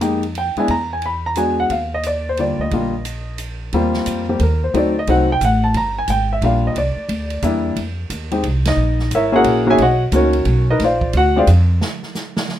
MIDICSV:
0, 0, Header, 1, 5, 480
1, 0, Start_track
1, 0, Tempo, 336889
1, 993, Time_signature, 3, 2, 24, 8
1, 17943, End_track
2, 0, Start_track
2, 0, Title_t, "Grand piano"
2, 0, Program_c, 0, 0
2, 14, Note_on_c, 0, 58, 60
2, 16, Note_on_c, 0, 63, 59
2, 17, Note_on_c, 0, 56, 60
2, 27, Note_on_c, 0, 67, 67
2, 299, Note_off_c, 0, 58, 0
2, 300, Note_off_c, 0, 63, 0
2, 301, Note_off_c, 0, 56, 0
2, 306, Note_off_c, 0, 67, 0
2, 538, Note_on_c, 0, 79, 78
2, 817, Note_on_c, 0, 59, 62
2, 820, Note_on_c, 0, 56, 67
2, 821, Note_on_c, 0, 64, 73
2, 822, Note_on_c, 0, 62, 62
2, 824, Note_off_c, 0, 79, 0
2, 852, Note_on_c, 0, 80, 72
2, 975, Note_off_c, 0, 59, 0
2, 976, Note_off_c, 0, 56, 0
2, 977, Note_off_c, 0, 62, 0
2, 977, Note_off_c, 0, 64, 0
2, 1005, Note_off_c, 0, 80, 0
2, 1007, Note_on_c, 0, 82, 89
2, 1299, Note_off_c, 0, 82, 0
2, 1325, Note_on_c, 0, 80, 72
2, 1482, Note_off_c, 0, 80, 0
2, 1505, Note_on_c, 0, 83, 85
2, 1788, Note_off_c, 0, 83, 0
2, 1799, Note_on_c, 0, 82, 86
2, 1948, Note_on_c, 0, 56, 55
2, 1952, Note_on_c, 0, 59, 50
2, 1954, Note_on_c, 0, 62, 50
2, 1954, Note_on_c, 0, 66, 62
2, 1959, Note_off_c, 0, 82, 0
2, 1961, Note_on_c, 0, 80, 78
2, 2256, Note_off_c, 0, 80, 0
2, 2276, Note_on_c, 0, 78, 79
2, 2432, Note_off_c, 0, 56, 0
2, 2434, Note_off_c, 0, 59, 0
2, 2435, Note_off_c, 0, 62, 0
2, 2435, Note_off_c, 0, 66, 0
2, 2438, Note_off_c, 0, 78, 0
2, 2438, Note_on_c, 0, 77, 78
2, 2735, Note_off_c, 0, 77, 0
2, 2770, Note_on_c, 0, 75, 81
2, 2925, Note_off_c, 0, 75, 0
2, 2945, Note_on_c, 0, 74, 70
2, 3229, Note_off_c, 0, 74, 0
2, 3265, Note_on_c, 0, 72, 76
2, 3401, Note_on_c, 0, 55, 49
2, 3404, Note_on_c, 0, 50, 41
2, 3404, Note_on_c, 0, 58, 41
2, 3409, Note_on_c, 0, 65, 51
2, 3413, Note_off_c, 0, 72, 0
2, 3423, Note_on_c, 0, 74, 69
2, 3708, Note_off_c, 0, 74, 0
2, 3718, Note_on_c, 0, 75, 77
2, 3872, Note_off_c, 0, 55, 0
2, 3875, Note_off_c, 0, 58, 0
2, 3880, Note_off_c, 0, 65, 0
2, 3893, Note_on_c, 0, 55, 59
2, 3893, Note_on_c, 0, 62, 55
2, 3897, Note_on_c, 0, 58, 51
2, 3902, Note_on_c, 0, 65, 70
2, 4126, Note_off_c, 0, 50, 0
2, 4161, Note_off_c, 0, 55, 0
2, 4161, Note_off_c, 0, 62, 0
2, 4163, Note_off_c, 0, 58, 0
2, 4166, Note_off_c, 0, 65, 0
2, 4787, Note_off_c, 0, 75, 0
2, 5330, Note_on_c, 0, 58, 67
2, 5330, Note_on_c, 0, 60, 61
2, 5331, Note_on_c, 0, 55, 74
2, 5335, Note_on_c, 0, 65, 79
2, 6049, Note_off_c, 0, 55, 0
2, 6049, Note_off_c, 0, 58, 0
2, 6049, Note_off_c, 0, 60, 0
2, 6051, Note_off_c, 0, 65, 0
2, 6114, Note_on_c, 0, 58, 58
2, 6115, Note_on_c, 0, 55, 60
2, 6115, Note_on_c, 0, 60, 55
2, 6117, Note_on_c, 0, 67, 71
2, 6246, Note_on_c, 0, 69, 43
2, 6265, Note_off_c, 0, 55, 0
2, 6265, Note_off_c, 0, 58, 0
2, 6265, Note_off_c, 0, 60, 0
2, 6266, Note_off_c, 0, 67, 0
2, 6282, Note_off_c, 0, 69, 0
2, 6311, Note_on_c, 0, 70, 65
2, 6592, Note_off_c, 0, 70, 0
2, 6608, Note_on_c, 0, 72, 62
2, 6748, Note_on_c, 0, 54, 59
2, 6756, Note_on_c, 0, 57, 56
2, 6760, Note_on_c, 0, 60, 57
2, 6760, Note_on_c, 0, 63, 68
2, 6764, Note_off_c, 0, 72, 0
2, 6798, Note_on_c, 0, 74, 68
2, 7028, Note_off_c, 0, 54, 0
2, 7032, Note_off_c, 0, 57, 0
2, 7034, Note_off_c, 0, 60, 0
2, 7034, Note_off_c, 0, 63, 0
2, 7075, Note_off_c, 0, 74, 0
2, 7110, Note_on_c, 0, 75, 81
2, 7242, Note_on_c, 0, 57, 54
2, 7248, Note_on_c, 0, 54, 62
2, 7249, Note_on_c, 0, 60, 57
2, 7253, Note_on_c, 0, 63, 74
2, 7255, Note_off_c, 0, 75, 0
2, 7270, Note_on_c, 0, 78, 74
2, 7515, Note_off_c, 0, 57, 0
2, 7518, Note_off_c, 0, 54, 0
2, 7518, Note_off_c, 0, 60, 0
2, 7520, Note_off_c, 0, 63, 0
2, 7550, Note_off_c, 0, 78, 0
2, 7584, Note_on_c, 0, 79, 93
2, 7732, Note_off_c, 0, 79, 0
2, 7760, Note_on_c, 0, 78, 84
2, 8031, Note_on_c, 0, 81, 77
2, 8035, Note_off_c, 0, 78, 0
2, 8194, Note_off_c, 0, 81, 0
2, 8222, Note_on_c, 0, 82, 89
2, 8506, Note_off_c, 0, 82, 0
2, 8527, Note_on_c, 0, 80, 80
2, 8682, Note_off_c, 0, 80, 0
2, 8693, Note_on_c, 0, 79, 87
2, 8981, Note_off_c, 0, 79, 0
2, 9014, Note_on_c, 0, 76, 74
2, 9165, Note_off_c, 0, 76, 0
2, 9165, Note_on_c, 0, 58, 53
2, 9169, Note_on_c, 0, 55, 56
2, 9175, Note_on_c, 0, 62, 54
2, 9179, Note_on_c, 0, 65, 66
2, 9183, Note_on_c, 0, 77, 84
2, 9466, Note_off_c, 0, 77, 0
2, 9504, Note_on_c, 0, 75, 70
2, 9638, Note_off_c, 0, 58, 0
2, 9640, Note_off_c, 0, 55, 0
2, 9643, Note_off_c, 0, 62, 0
2, 9645, Note_off_c, 0, 65, 0
2, 9650, Note_off_c, 0, 75, 0
2, 9659, Note_on_c, 0, 74, 73
2, 10585, Note_on_c, 0, 55, 63
2, 10587, Note_on_c, 0, 58, 61
2, 10593, Note_on_c, 0, 62, 61
2, 10596, Note_on_c, 0, 64, 73
2, 11027, Note_off_c, 0, 74, 0
2, 11068, Note_off_c, 0, 55, 0
2, 11069, Note_off_c, 0, 58, 0
2, 11072, Note_off_c, 0, 62, 0
2, 11073, Note_off_c, 0, 64, 0
2, 11848, Note_on_c, 0, 56, 65
2, 11854, Note_on_c, 0, 67, 66
2, 11855, Note_on_c, 0, 60, 54
2, 11857, Note_on_c, 0, 63, 56
2, 12008, Note_off_c, 0, 56, 0
2, 12011, Note_off_c, 0, 67, 0
2, 12012, Note_off_c, 0, 60, 0
2, 12013, Note_off_c, 0, 63, 0
2, 12363, Note_on_c, 0, 75, 86
2, 12366, Note_on_c, 0, 63, 61
2, 12958, Note_off_c, 0, 75, 0
2, 12959, Note_off_c, 0, 63, 0
2, 13036, Note_on_c, 0, 76, 84
2, 13038, Note_on_c, 0, 70, 67
2, 13039, Note_on_c, 0, 73, 66
2, 13040, Note_on_c, 0, 64, 64
2, 13275, Note_off_c, 0, 64, 0
2, 13283, Note_on_c, 0, 58, 78
2, 13288, Note_on_c, 0, 61, 70
2, 13296, Note_on_c, 0, 64, 65
2, 13297, Note_on_c, 0, 68, 85
2, 13310, Note_off_c, 0, 73, 0
2, 13311, Note_off_c, 0, 76, 0
2, 13312, Note_off_c, 0, 70, 0
2, 13331, Note_on_c, 0, 66, 70
2, 13332, Note_on_c, 0, 73, 75
2, 13332, Note_on_c, 0, 78, 88
2, 13335, Note_on_c, 0, 70, 77
2, 13739, Note_off_c, 0, 58, 0
2, 13741, Note_off_c, 0, 61, 0
2, 13745, Note_off_c, 0, 64, 0
2, 13746, Note_off_c, 0, 68, 0
2, 13759, Note_off_c, 0, 66, 0
2, 13761, Note_off_c, 0, 73, 0
2, 13762, Note_off_c, 0, 78, 0
2, 13763, Note_off_c, 0, 70, 0
2, 13774, Note_on_c, 0, 58, 72
2, 13781, Note_on_c, 0, 66, 70
2, 13783, Note_on_c, 0, 61, 62
2, 13785, Note_on_c, 0, 63, 63
2, 13822, Note_on_c, 0, 76, 78
2, 13824, Note_on_c, 0, 68, 84
2, 13826, Note_on_c, 0, 73, 67
2, 13828, Note_on_c, 0, 80, 101
2, 13931, Note_off_c, 0, 58, 0
2, 13934, Note_off_c, 0, 66, 0
2, 13935, Note_off_c, 0, 61, 0
2, 13936, Note_off_c, 0, 63, 0
2, 13968, Note_off_c, 0, 76, 0
2, 13969, Note_off_c, 0, 68, 0
2, 13970, Note_off_c, 0, 73, 0
2, 13971, Note_off_c, 0, 80, 0
2, 13993, Note_on_c, 0, 78, 80
2, 13997, Note_on_c, 0, 75, 70
2, 14002, Note_on_c, 0, 66, 69
2, 14006, Note_on_c, 0, 73, 64
2, 14269, Note_off_c, 0, 78, 0
2, 14272, Note_off_c, 0, 75, 0
2, 14274, Note_off_c, 0, 66, 0
2, 14276, Note_off_c, 0, 73, 0
2, 14431, Note_on_c, 0, 61, 57
2, 14433, Note_on_c, 0, 58, 58
2, 14438, Note_on_c, 0, 66, 72
2, 14440, Note_on_c, 0, 63, 58
2, 14456, Note_off_c, 0, 61, 0
2, 14460, Note_off_c, 0, 66, 0
2, 14473, Note_on_c, 0, 73, 77
2, 14477, Note_on_c, 0, 70, 64
2, 14478, Note_on_c, 0, 61, 65
2, 14481, Note_on_c, 0, 66, 65
2, 14707, Note_off_c, 0, 58, 0
2, 14711, Note_off_c, 0, 63, 0
2, 15184, Note_off_c, 0, 73, 0
2, 15187, Note_off_c, 0, 61, 0
2, 15187, Note_off_c, 0, 70, 0
2, 15189, Note_off_c, 0, 66, 0
2, 15252, Note_on_c, 0, 75, 83
2, 15257, Note_on_c, 0, 63, 61
2, 15257, Note_on_c, 0, 71, 64
2, 15261, Note_on_c, 0, 70, 73
2, 15403, Note_off_c, 0, 75, 0
2, 15405, Note_off_c, 0, 71, 0
2, 15406, Note_off_c, 0, 63, 0
2, 15407, Note_off_c, 0, 70, 0
2, 15442, Note_on_c, 0, 65, 59
2, 15447, Note_on_c, 0, 72, 69
2, 15448, Note_on_c, 0, 77, 79
2, 15451, Note_on_c, 0, 74, 60
2, 15864, Note_off_c, 0, 65, 0
2, 15867, Note_off_c, 0, 72, 0
2, 15868, Note_off_c, 0, 77, 0
2, 15869, Note_off_c, 0, 74, 0
2, 15917, Note_on_c, 0, 66, 82
2, 15918, Note_on_c, 0, 78, 92
2, 16187, Note_on_c, 0, 56, 66
2, 16187, Note_on_c, 0, 60, 57
2, 16190, Note_on_c, 0, 62, 65
2, 16192, Note_off_c, 0, 66, 0
2, 16192, Note_off_c, 0, 78, 0
2, 16197, Note_on_c, 0, 67, 75
2, 16210, Note_on_c, 0, 77, 85
2, 16223, Note_on_c, 0, 65, 68
2, 16224, Note_on_c, 0, 74, 69
2, 16226, Note_on_c, 0, 72, 71
2, 16304, Note_off_c, 0, 77, 0
2, 16313, Note_off_c, 0, 65, 0
2, 16314, Note_off_c, 0, 74, 0
2, 16315, Note_off_c, 0, 72, 0
2, 16338, Note_off_c, 0, 56, 0
2, 16338, Note_off_c, 0, 60, 0
2, 16339, Note_off_c, 0, 62, 0
2, 16343, Note_off_c, 0, 67, 0
2, 17943, End_track
3, 0, Start_track
3, 0, Title_t, "Upright bass"
3, 0, Program_c, 1, 32
3, 0, Note_on_c, 1, 41, 67
3, 758, Note_off_c, 1, 41, 0
3, 975, Note_on_c, 1, 40, 75
3, 2369, Note_off_c, 1, 40, 0
3, 2419, Note_on_c, 1, 39, 76
3, 3639, Note_off_c, 1, 39, 0
3, 3689, Note_on_c, 1, 38, 59
3, 3857, Note_off_c, 1, 38, 0
3, 3872, Note_on_c, 1, 34, 76
3, 5258, Note_off_c, 1, 34, 0
3, 5312, Note_on_c, 1, 39, 73
3, 5780, Note_off_c, 1, 39, 0
3, 5791, Note_on_c, 1, 41, 73
3, 6259, Note_off_c, 1, 41, 0
3, 6269, Note_on_c, 1, 39, 86
3, 6738, Note_off_c, 1, 39, 0
3, 6755, Note_on_c, 1, 38, 67
3, 7221, Note_off_c, 1, 38, 0
3, 7231, Note_on_c, 1, 36, 78
3, 7698, Note_off_c, 1, 36, 0
3, 7708, Note_on_c, 1, 33, 94
3, 8176, Note_off_c, 1, 33, 0
3, 8184, Note_on_c, 1, 31, 75
3, 8654, Note_off_c, 1, 31, 0
3, 8662, Note_on_c, 1, 32, 78
3, 9133, Note_off_c, 1, 32, 0
3, 9142, Note_on_c, 1, 34, 85
3, 9612, Note_off_c, 1, 34, 0
3, 9620, Note_on_c, 1, 36, 70
3, 9911, Note_off_c, 1, 36, 0
3, 10096, Note_on_c, 1, 38, 81
3, 10569, Note_off_c, 1, 38, 0
3, 10581, Note_on_c, 1, 40, 88
3, 11047, Note_off_c, 1, 40, 0
3, 11055, Note_on_c, 1, 41, 72
3, 11528, Note_off_c, 1, 41, 0
3, 11540, Note_on_c, 1, 39, 79
3, 12010, Note_off_c, 1, 39, 0
3, 12018, Note_on_c, 1, 36, 88
3, 12480, Note_off_c, 1, 36, 0
3, 12488, Note_on_c, 1, 34, 73
3, 12964, Note_off_c, 1, 34, 0
3, 12975, Note_on_c, 1, 32, 81
3, 13448, Note_off_c, 1, 32, 0
3, 13458, Note_on_c, 1, 34, 86
3, 13929, Note_off_c, 1, 34, 0
3, 13943, Note_on_c, 1, 35, 75
3, 14406, Note_off_c, 1, 35, 0
3, 14414, Note_on_c, 1, 37, 84
3, 14887, Note_off_c, 1, 37, 0
3, 14896, Note_on_c, 1, 35, 91
3, 15368, Note_off_c, 1, 35, 0
3, 15383, Note_on_c, 1, 34, 77
3, 15852, Note_off_c, 1, 34, 0
3, 15868, Note_on_c, 1, 38, 82
3, 16335, Note_off_c, 1, 38, 0
3, 16348, Note_on_c, 1, 41, 88
3, 16815, Note_off_c, 1, 41, 0
3, 17943, End_track
4, 0, Start_track
4, 0, Title_t, "Muted upright bass strokes"
4, 799, Note_on_c, 9, 29, 33
4, 942, Note_off_c, 9, 29, 0
4, 9921, Note_on_c, 9, 29, 36
4, 10064, Note_off_c, 9, 29, 0
4, 17943, End_track
5, 0, Start_track
5, 0, Title_t, "Drums"
5, 17, Note_on_c, 9, 44, 54
5, 17, Note_on_c, 9, 51, 58
5, 159, Note_off_c, 9, 44, 0
5, 159, Note_off_c, 9, 51, 0
5, 325, Note_on_c, 9, 51, 38
5, 468, Note_off_c, 9, 51, 0
5, 498, Note_on_c, 9, 51, 52
5, 641, Note_off_c, 9, 51, 0
5, 805, Note_on_c, 9, 51, 37
5, 948, Note_off_c, 9, 51, 0
5, 969, Note_on_c, 9, 51, 52
5, 978, Note_on_c, 9, 36, 31
5, 1111, Note_off_c, 9, 51, 0
5, 1120, Note_off_c, 9, 36, 0
5, 1449, Note_on_c, 9, 51, 51
5, 1591, Note_off_c, 9, 51, 0
5, 1930, Note_on_c, 9, 44, 55
5, 1930, Note_on_c, 9, 51, 57
5, 2073, Note_off_c, 9, 44, 0
5, 2073, Note_off_c, 9, 51, 0
5, 2419, Note_on_c, 9, 51, 52
5, 2422, Note_on_c, 9, 36, 30
5, 2562, Note_off_c, 9, 51, 0
5, 2565, Note_off_c, 9, 36, 0
5, 2897, Note_on_c, 9, 44, 55
5, 2897, Note_on_c, 9, 51, 63
5, 3040, Note_off_c, 9, 44, 0
5, 3040, Note_off_c, 9, 51, 0
5, 3380, Note_on_c, 9, 51, 50
5, 3523, Note_off_c, 9, 51, 0
5, 3864, Note_on_c, 9, 51, 54
5, 3868, Note_on_c, 9, 36, 33
5, 4007, Note_off_c, 9, 51, 0
5, 4011, Note_off_c, 9, 36, 0
5, 4343, Note_on_c, 9, 44, 54
5, 4343, Note_on_c, 9, 51, 60
5, 4486, Note_off_c, 9, 44, 0
5, 4486, Note_off_c, 9, 51, 0
5, 4815, Note_on_c, 9, 44, 57
5, 4815, Note_on_c, 9, 51, 57
5, 4958, Note_off_c, 9, 44, 0
5, 4958, Note_off_c, 9, 51, 0
5, 5308, Note_on_c, 9, 51, 54
5, 5312, Note_on_c, 9, 36, 18
5, 5450, Note_off_c, 9, 51, 0
5, 5455, Note_off_c, 9, 36, 0
5, 5608, Note_on_c, 9, 38, 47
5, 5750, Note_off_c, 9, 38, 0
5, 5782, Note_on_c, 9, 44, 62
5, 5782, Note_on_c, 9, 51, 70
5, 5793, Note_on_c, 9, 36, 19
5, 5924, Note_off_c, 9, 44, 0
5, 5924, Note_off_c, 9, 51, 0
5, 5935, Note_off_c, 9, 36, 0
5, 6261, Note_on_c, 9, 51, 55
5, 6275, Note_on_c, 9, 36, 20
5, 6404, Note_off_c, 9, 51, 0
5, 6417, Note_off_c, 9, 36, 0
5, 6756, Note_on_c, 9, 36, 24
5, 6758, Note_on_c, 9, 51, 54
5, 6898, Note_off_c, 9, 36, 0
5, 6901, Note_off_c, 9, 51, 0
5, 7227, Note_on_c, 9, 51, 57
5, 7232, Note_on_c, 9, 36, 22
5, 7370, Note_off_c, 9, 51, 0
5, 7375, Note_off_c, 9, 36, 0
5, 7709, Note_on_c, 9, 44, 58
5, 7709, Note_on_c, 9, 51, 62
5, 7710, Note_on_c, 9, 36, 17
5, 7851, Note_off_c, 9, 44, 0
5, 7851, Note_off_c, 9, 51, 0
5, 7853, Note_off_c, 9, 36, 0
5, 8181, Note_on_c, 9, 51, 54
5, 8187, Note_on_c, 9, 36, 26
5, 8323, Note_off_c, 9, 51, 0
5, 8329, Note_off_c, 9, 36, 0
5, 8656, Note_on_c, 9, 44, 52
5, 8656, Note_on_c, 9, 51, 65
5, 8664, Note_on_c, 9, 36, 24
5, 8798, Note_off_c, 9, 44, 0
5, 8798, Note_off_c, 9, 51, 0
5, 8806, Note_off_c, 9, 36, 0
5, 9143, Note_on_c, 9, 36, 18
5, 9145, Note_on_c, 9, 51, 52
5, 9285, Note_off_c, 9, 36, 0
5, 9288, Note_off_c, 9, 51, 0
5, 9623, Note_on_c, 9, 36, 20
5, 9627, Note_on_c, 9, 51, 62
5, 9766, Note_off_c, 9, 36, 0
5, 9769, Note_off_c, 9, 51, 0
5, 10102, Note_on_c, 9, 36, 20
5, 10102, Note_on_c, 9, 51, 61
5, 10244, Note_off_c, 9, 51, 0
5, 10245, Note_off_c, 9, 36, 0
5, 10403, Note_on_c, 9, 51, 46
5, 10545, Note_off_c, 9, 51, 0
5, 10578, Note_on_c, 9, 44, 52
5, 10578, Note_on_c, 9, 51, 63
5, 10580, Note_on_c, 9, 36, 23
5, 10720, Note_off_c, 9, 44, 0
5, 10720, Note_off_c, 9, 51, 0
5, 10723, Note_off_c, 9, 36, 0
5, 11062, Note_on_c, 9, 51, 60
5, 11063, Note_on_c, 9, 36, 18
5, 11204, Note_off_c, 9, 51, 0
5, 11205, Note_off_c, 9, 36, 0
5, 11540, Note_on_c, 9, 44, 52
5, 11540, Note_on_c, 9, 51, 67
5, 11542, Note_on_c, 9, 36, 21
5, 11683, Note_off_c, 9, 44, 0
5, 11683, Note_off_c, 9, 51, 0
5, 11684, Note_off_c, 9, 36, 0
5, 11846, Note_on_c, 9, 51, 45
5, 11988, Note_off_c, 9, 51, 0
5, 12018, Note_on_c, 9, 51, 57
5, 12021, Note_on_c, 9, 36, 23
5, 12161, Note_off_c, 9, 51, 0
5, 12164, Note_off_c, 9, 36, 0
5, 12329, Note_on_c, 9, 51, 70
5, 12333, Note_on_c, 9, 38, 75
5, 12472, Note_off_c, 9, 51, 0
5, 12476, Note_off_c, 9, 38, 0
5, 12811, Note_on_c, 9, 38, 35
5, 12953, Note_off_c, 9, 38, 0
5, 12980, Note_on_c, 9, 44, 54
5, 12980, Note_on_c, 9, 51, 66
5, 12981, Note_on_c, 9, 36, 19
5, 13122, Note_off_c, 9, 44, 0
5, 13122, Note_off_c, 9, 51, 0
5, 13123, Note_off_c, 9, 36, 0
5, 13454, Note_on_c, 9, 51, 59
5, 13459, Note_on_c, 9, 36, 21
5, 13596, Note_off_c, 9, 51, 0
5, 13602, Note_off_c, 9, 36, 0
5, 13938, Note_on_c, 9, 51, 54
5, 13940, Note_on_c, 9, 36, 25
5, 14080, Note_off_c, 9, 51, 0
5, 14083, Note_off_c, 9, 36, 0
5, 14417, Note_on_c, 9, 44, 59
5, 14417, Note_on_c, 9, 51, 68
5, 14420, Note_on_c, 9, 36, 20
5, 14560, Note_off_c, 9, 44, 0
5, 14560, Note_off_c, 9, 51, 0
5, 14563, Note_off_c, 9, 36, 0
5, 14719, Note_on_c, 9, 51, 45
5, 14862, Note_off_c, 9, 51, 0
5, 14889, Note_on_c, 9, 51, 52
5, 14900, Note_on_c, 9, 36, 21
5, 15032, Note_off_c, 9, 51, 0
5, 15043, Note_off_c, 9, 36, 0
5, 15381, Note_on_c, 9, 51, 60
5, 15383, Note_on_c, 9, 36, 17
5, 15385, Note_on_c, 9, 38, 36
5, 15523, Note_off_c, 9, 51, 0
5, 15525, Note_off_c, 9, 36, 0
5, 15527, Note_off_c, 9, 38, 0
5, 15692, Note_on_c, 9, 36, 51
5, 15835, Note_off_c, 9, 36, 0
5, 15860, Note_on_c, 9, 51, 59
5, 15865, Note_on_c, 9, 36, 23
5, 16002, Note_off_c, 9, 51, 0
5, 16007, Note_off_c, 9, 36, 0
5, 16345, Note_on_c, 9, 44, 51
5, 16345, Note_on_c, 9, 51, 68
5, 16347, Note_on_c, 9, 36, 18
5, 16487, Note_off_c, 9, 44, 0
5, 16487, Note_off_c, 9, 51, 0
5, 16489, Note_off_c, 9, 36, 0
5, 16832, Note_on_c, 9, 38, 91
5, 16974, Note_off_c, 9, 38, 0
5, 17137, Note_on_c, 9, 38, 34
5, 17279, Note_off_c, 9, 38, 0
5, 17307, Note_on_c, 9, 44, 58
5, 17312, Note_on_c, 9, 38, 53
5, 17450, Note_off_c, 9, 44, 0
5, 17454, Note_off_c, 9, 38, 0
5, 17618, Note_on_c, 9, 38, 94
5, 17760, Note_off_c, 9, 38, 0
5, 17790, Note_on_c, 9, 38, 45
5, 17932, Note_off_c, 9, 38, 0
5, 17943, End_track
0, 0, End_of_file